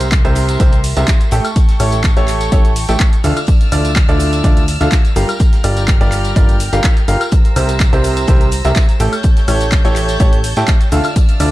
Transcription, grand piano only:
0.25 C3 E4 G4 A#4 C5
0.60 C3 E4 G4 A#4 C5
0.97 C3 E4 G4 A#4 E5
1.32 A3 E4 G4 A4 G5
1.80 A3 E4 G4 A4 C#5
2.17 A3 E4 G4 A4 C#5
2.52 A3 E4 G4 A4 C#5
2.89 A3 E4 G4 A4 G5
3.24 D3 E4 F4 A4 F5
3.72 D3 E4 F4 A4 D5
4.09 D3 E4 F4 A4 D5
4.44 D3 E4 F4 A4 D5
4.81 D3 E4 F4 A4 F5
5.16 G3 F4 G4 A#4 F5
5.64 G3 F4 G4 A#4 D5
6.01 G3 F4 G4 A#4 D5
6.36 G3 F4 G4 A#4 D5
6.73 G3 F4 G4 A#4 F5
7.08 F4 G4 A#4 F5
7.56 C3 E4 G4 A#4 C5
7.93 C3 E4 G4 A#4 C5
8.28 C3 E4 G4 A#4 C5
8.65 C3 E4 G4 A#4 E5
9.00 A3 E4 G4 A4 G5
9.48 A3 E4 G4 A4 C#5
9.85 A3 E4 G4 A4 C#5
10.20 A3 E4 G4 A4 C#5
10.57 A3 E4 G4 A4 G5
10.92 D3 E4 F4 A4 F5
11.40 D3 E4 F4 A4 D5

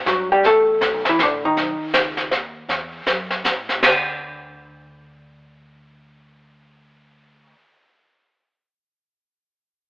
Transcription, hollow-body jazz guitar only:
0.07 F#3 F#4
0.32 G3 G4
0.46 A3 A4
1.09 E3 E4
1.23 D3 D4
1.45 D#3 D#4
3.85 D3

